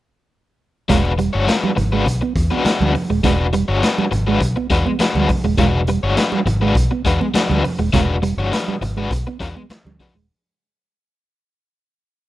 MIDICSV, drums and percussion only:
0, 0, Header, 1, 2, 480
1, 0, Start_track
1, 0, Tempo, 587659
1, 735, Time_signature, 4, 2, 24, 8
1, 10031, End_track
2, 0, Start_track
2, 0, Title_t, "Drums"
2, 728, Note_on_c, 9, 64, 94
2, 732, Note_on_c, 9, 36, 110
2, 732, Note_on_c, 9, 42, 103
2, 810, Note_off_c, 9, 64, 0
2, 814, Note_off_c, 9, 36, 0
2, 814, Note_off_c, 9, 42, 0
2, 859, Note_on_c, 9, 62, 36
2, 941, Note_off_c, 9, 62, 0
2, 968, Note_on_c, 9, 42, 58
2, 1049, Note_off_c, 9, 42, 0
2, 1213, Note_on_c, 9, 62, 35
2, 1214, Note_on_c, 9, 42, 82
2, 1218, Note_on_c, 9, 38, 111
2, 1218, Note_on_c, 9, 39, 87
2, 1295, Note_off_c, 9, 62, 0
2, 1296, Note_off_c, 9, 42, 0
2, 1300, Note_off_c, 9, 38, 0
2, 1300, Note_off_c, 9, 39, 0
2, 1336, Note_on_c, 9, 62, 34
2, 1336, Note_on_c, 9, 63, 83
2, 1417, Note_off_c, 9, 62, 0
2, 1417, Note_off_c, 9, 63, 0
2, 1452, Note_on_c, 9, 42, 76
2, 1452, Note_on_c, 9, 64, 91
2, 1533, Note_off_c, 9, 64, 0
2, 1534, Note_off_c, 9, 42, 0
2, 1682, Note_on_c, 9, 62, 30
2, 1685, Note_on_c, 9, 36, 84
2, 1696, Note_on_c, 9, 42, 96
2, 1764, Note_off_c, 9, 62, 0
2, 1767, Note_off_c, 9, 36, 0
2, 1778, Note_off_c, 9, 42, 0
2, 1814, Note_on_c, 9, 62, 37
2, 1896, Note_off_c, 9, 62, 0
2, 1924, Note_on_c, 9, 36, 89
2, 1930, Note_on_c, 9, 42, 82
2, 2006, Note_off_c, 9, 36, 0
2, 2012, Note_off_c, 9, 42, 0
2, 2055, Note_on_c, 9, 63, 75
2, 2137, Note_off_c, 9, 63, 0
2, 2161, Note_on_c, 9, 62, 37
2, 2165, Note_on_c, 9, 42, 77
2, 2173, Note_on_c, 9, 38, 96
2, 2173, Note_on_c, 9, 39, 75
2, 2243, Note_off_c, 9, 62, 0
2, 2247, Note_off_c, 9, 42, 0
2, 2254, Note_off_c, 9, 38, 0
2, 2254, Note_off_c, 9, 39, 0
2, 2299, Note_on_c, 9, 62, 41
2, 2299, Note_on_c, 9, 63, 90
2, 2380, Note_off_c, 9, 62, 0
2, 2380, Note_off_c, 9, 63, 0
2, 2408, Note_on_c, 9, 46, 59
2, 2413, Note_on_c, 9, 64, 79
2, 2490, Note_off_c, 9, 46, 0
2, 2494, Note_off_c, 9, 64, 0
2, 2645, Note_on_c, 9, 62, 40
2, 2645, Note_on_c, 9, 64, 99
2, 2647, Note_on_c, 9, 36, 99
2, 2647, Note_on_c, 9, 42, 96
2, 2726, Note_off_c, 9, 62, 0
2, 2726, Note_off_c, 9, 64, 0
2, 2728, Note_off_c, 9, 36, 0
2, 2729, Note_off_c, 9, 42, 0
2, 2882, Note_on_c, 9, 42, 63
2, 2964, Note_off_c, 9, 42, 0
2, 3130, Note_on_c, 9, 62, 32
2, 3131, Note_on_c, 9, 42, 93
2, 3135, Note_on_c, 9, 38, 101
2, 3135, Note_on_c, 9, 39, 83
2, 3212, Note_off_c, 9, 62, 0
2, 3213, Note_off_c, 9, 42, 0
2, 3217, Note_off_c, 9, 38, 0
2, 3217, Note_off_c, 9, 39, 0
2, 3254, Note_on_c, 9, 62, 36
2, 3254, Note_on_c, 9, 63, 74
2, 3335, Note_off_c, 9, 62, 0
2, 3335, Note_off_c, 9, 63, 0
2, 3368, Note_on_c, 9, 42, 71
2, 3373, Note_on_c, 9, 64, 82
2, 3449, Note_off_c, 9, 42, 0
2, 3455, Note_off_c, 9, 64, 0
2, 3599, Note_on_c, 9, 36, 95
2, 3601, Note_on_c, 9, 62, 33
2, 3609, Note_on_c, 9, 42, 84
2, 3680, Note_off_c, 9, 36, 0
2, 3683, Note_off_c, 9, 62, 0
2, 3691, Note_off_c, 9, 42, 0
2, 3732, Note_on_c, 9, 62, 34
2, 3813, Note_off_c, 9, 62, 0
2, 3840, Note_on_c, 9, 36, 97
2, 3845, Note_on_c, 9, 42, 76
2, 3921, Note_off_c, 9, 36, 0
2, 3927, Note_off_c, 9, 42, 0
2, 3975, Note_on_c, 9, 63, 72
2, 4057, Note_off_c, 9, 63, 0
2, 4075, Note_on_c, 9, 62, 35
2, 4081, Note_on_c, 9, 42, 91
2, 4088, Note_on_c, 9, 38, 102
2, 4088, Note_on_c, 9, 39, 79
2, 4157, Note_off_c, 9, 62, 0
2, 4163, Note_off_c, 9, 42, 0
2, 4170, Note_off_c, 9, 38, 0
2, 4170, Note_off_c, 9, 39, 0
2, 4210, Note_on_c, 9, 62, 39
2, 4210, Note_on_c, 9, 63, 86
2, 4292, Note_off_c, 9, 62, 0
2, 4292, Note_off_c, 9, 63, 0
2, 4321, Note_on_c, 9, 36, 75
2, 4321, Note_on_c, 9, 46, 60
2, 4326, Note_on_c, 9, 64, 80
2, 4403, Note_off_c, 9, 36, 0
2, 4403, Note_off_c, 9, 46, 0
2, 4408, Note_off_c, 9, 64, 0
2, 4553, Note_on_c, 9, 62, 38
2, 4553, Note_on_c, 9, 64, 94
2, 4559, Note_on_c, 9, 42, 96
2, 4560, Note_on_c, 9, 36, 100
2, 4635, Note_off_c, 9, 62, 0
2, 4635, Note_off_c, 9, 64, 0
2, 4641, Note_off_c, 9, 42, 0
2, 4642, Note_off_c, 9, 36, 0
2, 4795, Note_on_c, 9, 42, 61
2, 4877, Note_off_c, 9, 42, 0
2, 5042, Note_on_c, 9, 42, 84
2, 5044, Note_on_c, 9, 62, 36
2, 5046, Note_on_c, 9, 38, 99
2, 5046, Note_on_c, 9, 39, 83
2, 5124, Note_off_c, 9, 42, 0
2, 5125, Note_off_c, 9, 62, 0
2, 5128, Note_off_c, 9, 38, 0
2, 5128, Note_off_c, 9, 39, 0
2, 5162, Note_on_c, 9, 62, 32
2, 5162, Note_on_c, 9, 63, 75
2, 5244, Note_off_c, 9, 62, 0
2, 5244, Note_off_c, 9, 63, 0
2, 5282, Note_on_c, 9, 42, 75
2, 5284, Note_on_c, 9, 64, 90
2, 5364, Note_off_c, 9, 42, 0
2, 5366, Note_off_c, 9, 64, 0
2, 5516, Note_on_c, 9, 36, 101
2, 5527, Note_on_c, 9, 42, 92
2, 5598, Note_off_c, 9, 36, 0
2, 5609, Note_off_c, 9, 42, 0
2, 5757, Note_on_c, 9, 36, 84
2, 5762, Note_on_c, 9, 42, 73
2, 5838, Note_off_c, 9, 36, 0
2, 5844, Note_off_c, 9, 42, 0
2, 5891, Note_on_c, 9, 63, 81
2, 5973, Note_off_c, 9, 63, 0
2, 5995, Note_on_c, 9, 62, 33
2, 6003, Note_on_c, 9, 42, 93
2, 6010, Note_on_c, 9, 38, 95
2, 6010, Note_on_c, 9, 39, 91
2, 6077, Note_off_c, 9, 62, 0
2, 6085, Note_off_c, 9, 42, 0
2, 6092, Note_off_c, 9, 38, 0
2, 6092, Note_off_c, 9, 39, 0
2, 6134, Note_on_c, 9, 63, 91
2, 6216, Note_off_c, 9, 63, 0
2, 6244, Note_on_c, 9, 46, 53
2, 6251, Note_on_c, 9, 64, 83
2, 6326, Note_off_c, 9, 46, 0
2, 6333, Note_off_c, 9, 64, 0
2, 6483, Note_on_c, 9, 42, 103
2, 6483, Note_on_c, 9, 64, 95
2, 6484, Note_on_c, 9, 36, 94
2, 6565, Note_off_c, 9, 36, 0
2, 6565, Note_off_c, 9, 42, 0
2, 6565, Note_off_c, 9, 64, 0
2, 6719, Note_on_c, 9, 42, 72
2, 6801, Note_off_c, 9, 42, 0
2, 6853, Note_on_c, 9, 63, 58
2, 6935, Note_off_c, 9, 63, 0
2, 6969, Note_on_c, 9, 42, 90
2, 6970, Note_on_c, 9, 62, 36
2, 6973, Note_on_c, 9, 38, 96
2, 6973, Note_on_c, 9, 39, 87
2, 7051, Note_off_c, 9, 42, 0
2, 7051, Note_off_c, 9, 62, 0
2, 7055, Note_off_c, 9, 38, 0
2, 7055, Note_off_c, 9, 39, 0
2, 7092, Note_on_c, 9, 62, 33
2, 7092, Note_on_c, 9, 63, 72
2, 7174, Note_off_c, 9, 62, 0
2, 7174, Note_off_c, 9, 63, 0
2, 7205, Note_on_c, 9, 42, 71
2, 7208, Note_on_c, 9, 64, 81
2, 7287, Note_off_c, 9, 42, 0
2, 7290, Note_off_c, 9, 64, 0
2, 7441, Note_on_c, 9, 36, 99
2, 7450, Note_on_c, 9, 42, 90
2, 7522, Note_off_c, 9, 36, 0
2, 7531, Note_off_c, 9, 42, 0
2, 7576, Note_on_c, 9, 62, 35
2, 7657, Note_off_c, 9, 62, 0
2, 7682, Note_on_c, 9, 36, 84
2, 7688, Note_on_c, 9, 42, 76
2, 7764, Note_off_c, 9, 36, 0
2, 7770, Note_off_c, 9, 42, 0
2, 7814, Note_on_c, 9, 63, 69
2, 7896, Note_off_c, 9, 63, 0
2, 7920, Note_on_c, 9, 62, 35
2, 7924, Note_on_c, 9, 42, 77
2, 7931, Note_on_c, 9, 38, 96
2, 7931, Note_on_c, 9, 39, 85
2, 8002, Note_off_c, 9, 62, 0
2, 8005, Note_off_c, 9, 42, 0
2, 8012, Note_off_c, 9, 38, 0
2, 8012, Note_off_c, 9, 39, 0
2, 8059, Note_on_c, 9, 62, 40
2, 8059, Note_on_c, 9, 63, 97
2, 8141, Note_off_c, 9, 62, 0
2, 8141, Note_off_c, 9, 63, 0
2, 8169, Note_on_c, 9, 36, 92
2, 8169, Note_on_c, 9, 46, 62
2, 8177, Note_on_c, 9, 64, 81
2, 8251, Note_off_c, 9, 36, 0
2, 8251, Note_off_c, 9, 46, 0
2, 8259, Note_off_c, 9, 64, 0
2, 10031, End_track
0, 0, End_of_file